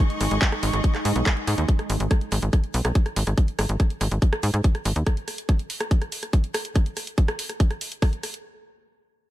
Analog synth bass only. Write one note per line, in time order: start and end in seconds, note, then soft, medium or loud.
0.21 0.28 G#1 medium
0.31 0.39 G#1 medium
0.63 0.70 G#1 loud
0.73 0.81 G#1 medium
1.05 1.13 G#2 medium
1.16 1.23 B1 medium
1.47 1.55 G#2 medium
1.58 1.65 D#2 medium
1.90 1.97 G#1 medium
2.00 2.08 G#1 medium
2.32 2.39 G#1 medium
2.42 2.50 G#1 medium
2.74 2.82 B1 loud
2.85 2.92 B1 medium
3.16 3.24 G#1 medium
3.27 3.35 G#1 medium
3.59 3.66 G#1 loud
3.69 3.77 G#1 medium
4.01 4.08 G#1 loud
4.11 4.19 G#1 medium
4.43 4.51 G#2 medium
4.54 4.61 G#2 medium
4.85 4.93 G#1 medium
4.96 5.04 D#2 medium